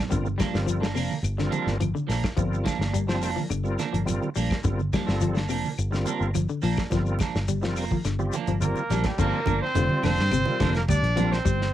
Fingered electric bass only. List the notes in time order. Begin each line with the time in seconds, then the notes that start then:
0.12 G1
0.54 G1
0.96 F1
1.23 G1
1.67 G1
2.09 A#1
2.38 G1
2.79 G1
3.22 F1
3.50 G1
3.93 G1
4.37 A#1
4.65 G1
5.08 G1
5.49 F1
5.78 G1
6.21 G1
6.63 A#1
6.92 G1
7.35 G1
7.76 F1
8.05 G1
8.48 G1
8.90 A#1
9.19 G1
9.47 G1
9.75 F1
10.04 F1
10.18 G2
10.31 G1
10.61 F1
10.89 D2
11.02 A#1
11.46 G1